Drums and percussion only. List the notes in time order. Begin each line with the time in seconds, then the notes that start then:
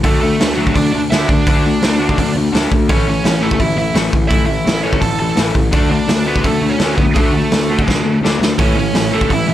0.03 kick, open hi-hat
0.40 snare, open hi-hat
0.67 kick
0.76 kick, open hi-hat
1.12 snare, open hi-hat
1.29 kick
1.47 kick, open hi-hat
1.82 snare, open hi-hat
2.09 kick
2.18 kick, open hi-hat
2.55 snare, open hi-hat
2.72 kick
2.89 kick, open hi-hat
3.25 snare, open hi-hat
3.51 kick
3.60 kick, open hi-hat
3.95 snare, open hi-hat
4.13 kick
4.31 kick, open hi-hat
4.67 snare, open hi-hat
4.93 kick
5.02 kick, open hi-hat
5.37 snare, open hi-hat
5.55 kick
5.72 kick, open hi-hat
6.09 snare, open hi-hat
6.36 kick
6.44 kick, open hi-hat
6.79 snare, open hi-hat
6.98 kick
7.15 kick, open hi-hat
7.52 snare, open hi-hat
7.79 kick
7.88 kick, snare
8.25 snare
8.42 snare
8.58 kick, open hi-hat
8.95 snare, open hi-hat
9.21 kick
9.30 kick, open hi-hat